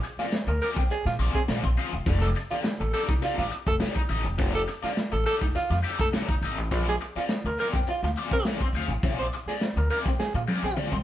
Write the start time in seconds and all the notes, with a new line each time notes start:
0.03 muted overdriven electric guitar stroke, closed hi-hat, tambourine
0.17 C4 F4 G#4 D5, muted upright bass stroke, snare, closed hi-hat
0.32 snare, tambourine
0.47 D2 A#4, muted overdriven electric guitar stroke
0.61 C4 F4 G#4 A#4 D5, closed hi-hat, tambourine
0.76 A#1, muted overdriven electric guitar stroke, kick, snare, closed hi-hat
0.90 G#4, muted overdriven electric guitar stroke, closed hi-hat, tambourine
1.05 A#2 F4, muted overdriven electric guitar stroke, snare, closed hi-hat
1.19 A#1 C4 F4 G#4 D5, open hi-hat, tambourine
1.34 A#1 G#4, muted overdriven electric guitar stroke, kick, closed hi-hat
1.48 A#2 C4 F4 G#4 D5, snare, tambourine
1.63 A#1, muted overdriven electric guitar stroke, kick, closed hi-hat
1.77 C4 F4 G#4 F5, closed hi-hat, tambourine
1.92 E1, muted overdriven electric guitar stroke, closed hi-hat
2.06 F1 D#4 G4 A4 D5, kick, closed hi-hat, tambourine
2.22 A4, snare, closed hi-hat
2.35 muted overdriven electric guitar stroke, closed hi-hat, tambourine
2.50 D#4 F4 G4 A4 D5, muted upright bass stroke, closed hi-hat
2.64 snare, tambourine
2.79 A1 A4, muted overdriven electric guitar stroke, closed hi-hat
2.93 D#4 G4 A4 D5, closed hi-hat, tambourine
3.08 C2, muted overdriven electric guitar stroke, kick, snare, closed hi-hat
3.22 D#4 F4 G4 A4 D5, closed hi-hat
3.38 A1 F4, snare, closed hi-hat
3.51 muted overdriven electric guitar stroke, closed hi-hat, tambourine
3.66 F1 A4, muted overdriven electric guitar stroke, kick, closed hi-hat
3.80 D#4 G4 A4 D5, snare, tambourine
3.95 muted overdriven electric guitar stroke, kick, closed hi-hat
4.09 A1 D#4 G4 A4 D#5, closed hi-hat, tambourine
4.24 E1, muted overdriven electric guitar stroke, closed hi-hat
4.38 F1 D#4 G4 A4 D5, kick, closed hi-hat, tambourine
4.54 A4, closed hi-hat
4.68 muted overdriven electric guitar stroke, closed hi-hat, tambourine
4.83 D#4 F4 G4 A4 D5, muted upright bass stroke, snare, closed hi-hat
4.97 snare, tambourine
5.12 A1 A4, muted overdriven electric guitar stroke, closed hi-hat
5.26 D#4 G4 A4 D5, closed hi-hat, tambourine
5.41 F1, muted overdriven electric guitar stroke, kick, snare, closed hi-hat
5.55 F4, muted overdriven electric guitar stroke, muted upright bass stroke, closed hi-hat, tambourine
5.70 F2 F4, muted overdriven electric guitar stroke, snare, closed hi-hat
5.83 D#4 G4 A4 D5, closed hi-hat, tambourine
5.99 F1 A4, muted overdriven electric guitar stroke, kick, snare, closed hi-hat
6.13 D#4 G4 A4 D5, snare, tambourine
6.29 F1, muted overdriven electric guitar stroke, kick
6.42 G#1 D#4 G4 A4 D#5, closed hi-hat, tambourine
6.58 A1, muted overdriven electric guitar stroke, closed hi-hat
6.71 A#1 C4 F4 G#4 D5, kick, closed hi-hat, tambourine
6.87 G#4, snare, closed hi-hat
7.00 muted overdriven electric guitar stroke, closed hi-hat, tambourine
7.15 C4 F4 G#4 D5, muted upright bass stroke, closed hi-hat
7.29 snare, tambourine
7.44 D2 A#4, muted overdriven electric guitar stroke, closed hi-hat
7.58 C4 F4 G#4 A#4 D5, closed hi-hat, tambourine
7.73 F2, muted overdriven electric guitar stroke, kick, snare, closed hi-hat
7.87 F4, muted overdriven electric guitar stroke, closed hi-hat
8.03 D2 F4, muted overdriven electric guitar stroke, snare, closed hi-hat
8.15 C4 F4 G#4 D5, closed hi-hat, tambourine
8.31 A#1 A#4, muted overdriven electric guitar stroke, kick, closed hi-hat
8.45 C4 F4 G#4 D5, snare, tambourine
8.60 muted overdriven electric guitar stroke, kick, closed hi-hat
8.73 D2 C4 F4 G#4 F5, closed hi-hat, tambourine
8.88 A1, muted overdriven electric guitar stroke, closed hi-hat
9.03 A#1 C4 F4 G#4 D5, kick, closed hi-hat, tambourine
9.19 C5, closed hi-hat
9.33 muted overdriven electric guitar stroke, closed hi-hat, tambourine
9.46 F4 G#4 D5, muted upright bass stroke, snare, closed hi-hat
9.50 C4
9.61 snare, tambourine
9.76 D2 A#4, muted overdriven electric guitar stroke, closed hi-hat
9.90 C4 F4 G#4 A#4 D5, closed hi-hat, tambourine
10.06 A#1, muted overdriven electric guitar stroke, kick, snare, closed hi-hat
10.19 G#4, muted upright bass stroke, muted overdriven electric guitar stroke, snare
10.34 A#2 F4, muted overdriven electric guitar stroke
10.47 C4 F4 G#4 D5, high tom, tambourine
10.63 A#1 G#4, muted overdriven electric guitar stroke
10.77 C4 F4 G#4 D5, mid tom, tambourine
10.92 A#1, muted overdriven electric guitar stroke, mid tom